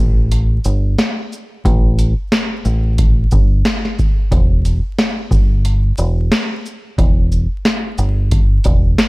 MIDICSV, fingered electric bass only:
0, 0, Header, 1, 2, 480
1, 0, Start_track
1, 0, Tempo, 666667
1, 1187, Time_signature, 4, 2, 24, 8
1, 6540, End_track
2, 0, Start_track
2, 0, Title_t, "Fingered electric bass"
2, 0, Program_c, 0, 33
2, 0, Note_on_c, 0, 33, 90
2, 413, Note_off_c, 0, 33, 0
2, 470, Note_on_c, 0, 31, 90
2, 683, Note_off_c, 0, 31, 0
2, 1189, Note_on_c, 0, 33, 120
2, 1532, Note_off_c, 0, 33, 0
2, 1910, Note_on_c, 0, 33, 96
2, 2337, Note_off_c, 0, 33, 0
2, 2392, Note_on_c, 0, 31, 105
2, 2604, Note_off_c, 0, 31, 0
2, 3109, Note_on_c, 0, 28, 112
2, 3451, Note_off_c, 0, 28, 0
2, 3824, Note_on_c, 0, 31, 93
2, 4254, Note_off_c, 0, 31, 0
2, 4310, Note_on_c, 0, 28, 99
2, 4523, Note_off_c, 0, 28, 0
2, 5028, Note_on_c, 0, 28, 114
2, 5371, Note_off_c, 0, 28, 0
2, 5750, Note_on_c, 0, 31, 91
2, 6177, Note_off_c, 0, 31, 0
2, 6231, Note_on_c, 0, 28, 100
2, 6443, Note_off_c, 0, 28, 0
2, 6540, End_track
0, 0, End_of_file